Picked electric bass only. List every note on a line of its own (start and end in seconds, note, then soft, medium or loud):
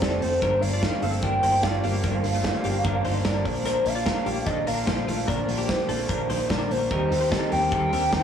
0.02 0.19 F1 loud
0.22 0.38 F1 medium
0.42 0.59 G1 medium
0.62 0.87 G1 medium
1.02 1.19 G1 medium
1.23 1.39 G1 medium
1.43 1.59 G1 medium
1.63 1.80 G1 medium
1.84 2.00 G1 medium
2.04 2.20 G1 medium
2.24 2.49 G1 medium
2.65 2.81 G1 medium
2.85 3.01 G1 medium
3.05 3.21 G1 medium
3.25 3.42 G1 medium
3.45 3.79 A#1 medium
3.86 4.11 A#1 medium
4.26 4.43 A#1 medium
4.47 4.63 A#1 loud
4.68 4.84 A#1 medium
4.88 5.04 A#1 medium
5.08 5.25 A#1 medium
5.28 5.45 A#1 loud
5.48 5.73 A#1 medium
5.89 6.05 A#1 medium
6.09 6.26 A#1 medium
6.29 6.46 A#1 medium
6.50 6.67 A#1 medium
6.71 6.87 A#1 medium
6.91 7.07 D#2 loud
7.11 7.36 D#2 medium
7.53 7.69 D#2 medium
7.72 7.89 D#2 medium
7.93 8.09 D#2 medium
8.13 8.23 D#2 medium